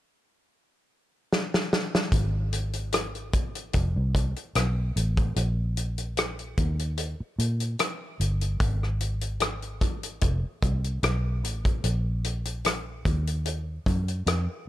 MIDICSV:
0, 0, Header, 1, 4, 480
1, 0, Start_track
1, 0, Tempo, 809717
1, 1257, Time_signature, 4, 2, 24, 8
1, 8705, End_track
2, 0, Start_track
2, 0, Title_t, "Fingered electric bass"
2, 0, Program_c, 0, 33
2, 1258, Note_on_c, 0, 32, 88
2, 2195, Note_off_c, 0, 32, 0
2, 2219, Note_on_c, 0, 29, 90
2, 2335, Note_off_c, 0, 29, 0
2, 2349, Note_on_c, 0, 36, 78
2, 2563, Note_off_c, 0, 36, 0
2, 2701, Note_on_c, 0, 35, 92
2, 2914, Note_off_c, 0, 35, 0
2, 2941, Note_on_c, 0, 33, 82
2, 3155, Note_off_c, 0, 33, 0
2, 3179, Note_on_c, 0, 34, 94
2, 3876, Note_off_c, 0, 34, 0
2, 3900, Note_on_c, 0, 39, 82
2, 4230, Note_off_c, 0, 39, 0
2, 4378, Note_on_c, 0, 46, 72
2, 4593, Note_off_c, 0, 46, 0
2, 4860, Note_on_c, 0, 31, 78
2, 5074, Note_off_c, 0, 31, 0
2, 5099, Note_on_c, 0, 32, 98
2, 6036, Note_off_c, 0, 32, 0
2, 6061, Note_on_c, 0, 29, 93
2, 6176, Note_off_c, 0, 29, 0
2, 6299, Note_on_c, 0, 36, 72
2, 6514, Note_off_c, 0, 36, 0
2, 6538, Note_on_c, 0, 35, 86
2, 6777, Note_off_c, 0, 35, 0
2, 6777, Note_on_c, 0, 33, 77
2, 6993, Note_off_c, 0, 33, 0
2, 7018, Note_on_c, 0, 34, 84
2, 7715, Note_off_c, 0, 34, 0
2, 7739, Note_on_c, 0, 39, 73
2, 8167, Note_off_c, 0, 39, 0
2, 8218, Note_on_c, 0, 42, 66
2, 8433, Note_off_c, 0, 42, 0
2, 8457, Note_on_c, 0, 41, 80
2, 8573, Note_off_c, 0, 41, 0
2, 8705, End_track
3, 0, Start_track
3, 0, Title_t, "Muted fingered electric bass strokes"
3, 4271, Note_on_c, 9, 29, 39
3, 4330, Note_off_c, 9, 29, 0
3, 6188, Note_on_c, 9, 29, 41
3, 6248, Note_off_c, 9, 29, 0
3, 8705, End_track
4, 0, Start_track
4, 0, Title_t, "Drums"
4, 786, Note_on_c, 9, 38, 64
4, 845, Note_off_c, 9, 38, 0
4, 915, Note_on_c, 9, 38, 73
4, 974, Note_off_c, 9, 38, 0
4, 1025, Note_on_c, 9, 38, 78
4, 1084, Note_off_c, 9, 38, 0
4, 1155, Note_on_c, 9, 38, 85
4, 1214, Note_off_c, 9, 38, 0
4, 1255, Note_on_c, 9, 42, 76
4, 1257, Note_on_c, 9, 36, 102
4, 1315, Note_off_c, 9, 42, 0
4, 1316, Note_off_c, 9, 36, 0
4, 1497, Note_on_c, 9, 42, 70
4, 1557, Note_off_c, 9, 42, 0
4, 1621, Note_on_c, 9, 42, 50
4, 1680, Note_off_c, 9, 42, 0
4, 1734, Note_on_c, 9, 42, 74
4, 1744, Note_on_c, 9, 37, 87
4, 1793, Note_off_c, 9, 42, 0
4, 1803, Note_off_c, 9, 37, 0
4, 1866, Note_on_c, 9, 42, 28
4, 1925, Note_off_c, 9, 42, 0
4, 1975, Note_on_c, 9, 42, 65
4, 1977, Note_on_c, 9, 36, 83
4, 2034, Note_off_c, 9, 42, 0
4, 2036, Note_off_c, 9, 36, 0
4, 2105, Note_on_c, 9, 42, 50
4, 2165, Note_off_c, 9, 42, 0
4, 2212, Note_on_c, 9, 42, 69
4, 2219, Note_on_c, 9, 36, 75
4, 2272, Note_off_c, 9, 42, 0
4, 2278, Note_off_c, 9, 36, 0
4, 2458, Note_on_c, 9, 36, 76
4, 2464, Note_on_c, 9, 42, 67
4, 2518, Note_off_c, 9, 36, 0
4, 2523, Note_off_c, 9, 42, 0
4, 2587, Note_on_c, 9, 42, 39
4, 2646, Note_off_c, 9, 42, 0
4, 2698, Note_on_c, 9, 42, 86
4, 2705, Note_on_c, 9, 37, 101
4, 2757, Note_off_c, 9, 42, 0
4, 2764, Note_off_c, 9, 37, 0
4, 2944, Note_on_c, 9, 42, 62
4, 3003, Note_off_c, 9, 42, 0
4, 3066, Note_on_c, 9, 42, 43
4, 3067, Note_on_c, 9, 36, 81
4, 3126, Note_off_c, 9, 42, 0
4, 3127, Note_off_c, 9, 36, 0
4, 3179, Note_on_c, 9, 42, 78
4, 3239, Note_off_c, 9, 42, 0
4, 3420, Note_on_c, 9, 42, 65
4, 3479, Note_off_c, 9, 42, 0
4, 3544, Note_on_c, 9, 42, 49
4, 3603, Note_off_c, 9, 42, 0
4, 3657, Note_on_c, 9, 42, 75
4, 3668, Note_on_c, 9, 37, 86
4, 3717, Note_off_c, 9, 42, 0
4, 3727, Note_off_c, 9, 37, 0
4, 3787, Note_on_c, 9, 42, 29
4, 3846, Note_off_c, 9, 42, 0
4, 3898, Note_on_c, 9, 42, 66
4, 3899, Note_on_c, 9, 36, 92
4, 3957, Note_off_c, 9, 42, 0
4, 3959, Note_off_c, 9, 36, 0
4, 4027, Note_on_c, 9, 42, 51
4, 4087, Note_off_c, 9, 42, 0
4, 4135, Note_on_c, 9, 42, 70
4, 4194, Note_off_c, 9, 42, 0
4, 4384, Note_on_c, 9, 42, 67
4, 4443, Note_off_c, 9, 42, 0
4, 4506, Note_on_c, 9, 42, 39
4, 4565, Note_off_c, 9, 42, 0
4, 4618, Note_on_c, 9, 42, 83
4, 4625, Note_on_c, 9, 37, 104
4, 4678, Note_off_c, 9, 42, 0
4, 4684, Note_off_c, 9, 37, 0
4, 4864, Note_on_c, 9, 42, 64
4, 4924, Note_off_c, 9, 42, 0
4, 4986, Note_on_c, 9, 42, 43
4, 5045, Note_off_c, 9, 42, 0
4, 5097, Note_on_c, 9, 42, 78
4, 5099, Note_on_c, 9, 36, 106
4, 5156, Note_off_c, 9, 42, 0
4, 5158, Note_off_c, 9, 36, 0
4, 5236, Note_on_c, 9, 37, 30
4, 5295, Note_off_c, 9, 37, 0
4, 5338, Note_on_c, 9, 42, 68
4, 5397, Note_off_c, 9, 42, 0
4, 5461, Note_on_c, 9, 42, 48
4, 5520, Note_off_c, 9, 42, 0
4, 5573, Note_on_c, 9, 42, 78
4, 5583, Note_on_c, 9, 37, 91
4, 5632, Note_off_c, 9, 42, 0
4, 5643, Note_off_c, 9, 37, 0
4, 5704, Note_on_c, 9, 42, 29
4, 5763, Note_off_c, 9, 42, 0
4, 5816, Note_on_c, 9, 42, 72
4, 5817, Note_on_c, 9, 36, 85
4, 5875, Note_off_c, 9, 42, 0
4, 5877, Note_off_c, 9, 36, 0
4, 5946, Note_on_c, 9, 42, 53
4, 6005, Note_off_c, 9, 42, 0
4, 6054, Note_on_c, 9, 42, 70
4, 6059, Note_on_c, 9, 36, 71
4, 6113, Note_off_c, 9, 42, 0
4, 6118, Note_off_c, 9, 36, 0
4, 6298, Note_on_c, 9, 36, 83
4, 6303, Note_on_c, 9, 42, 63
4, 6358, Note_off_c, 9, 36, 0
4, 6363, Note_off_c, 9, 42, 0
4, 6427, Note_on_c, 9, 42, 40
4, 6487, Note_off_c, 9, 42, 0
4, 6538, Note_on_c, 9, 42, 81
4, 6545, Note_on_c, 9, 37, 100
4, 6597, Note_off_c, 9, 42, 0
4, 6604, Note_off_c, 9, 37, 0
4, 6784, Note_on_c, 9, 42, 63
4, 6844, Note_off_c, 9, 42, 0
4, 6907, Note_on_c, 9, 36, 89
4, 6907, Note_on_c, 9, 42, 43
4, 6966, Note_off_c, 9, 36, 0
4, 6966, Note_off_c, 9, 42, 0
4, 7017, Note_on_c, 9, 42, 78
4, 7076, Note_off_c, 9, 42, 0
4, 7259, Note_on_c, 9, 42, 70
4, 7318, Note_off_c, 9, 42, 0
4, 7382, Note_on_c, 9, 42, 47
4, 7442, Note_off_c, 9, 42, 0
4, 7497, Note_on_c, 9, 42, 75
4, 7507, Note_on_c, 9, 37, 89
4, 7556, Note_off_c, 9, 42, 0
4, 7566, Note_off_c, 9, 37, 0
4, 7738, Note_on_c, 9, 36, 87
4, 7739, Note_on_c, 9, 42, 63
4, 7798, Note_off_c, 9, 36, 0
4, 7798, Note_off_c, 9, 42, 0
4, 7868, Note_on_c, 9, 42, 48
4, 7927, Note_off_c, 9, 42, 0
4, 7976, Note_on_c, 9, 42, 70
4, 8035, Note_off_c, 9, 42, 0
4, 8218, Note_on_c, 9, 36, 80
4, 8225, Note_on_c, 9, 42, 65
4, 8277, Note_off_c, 9, 36, 0
4, 8284, Note_off_c, 9, 42, 0
4, 8347, Note_on_c, 9, 42, 38
4, 8407, Note_off_c, 9, 42, 0
4, 8459, Note_on_c, 9, 42, 85
4, 8466, Note_on_c, 9, 37, 106
4, 8518, Note_off_c, 9, 42, 0
4, 8525, Note_off_c, 9, 37, 0
4, 8705, End_track
0, 0, End_of_file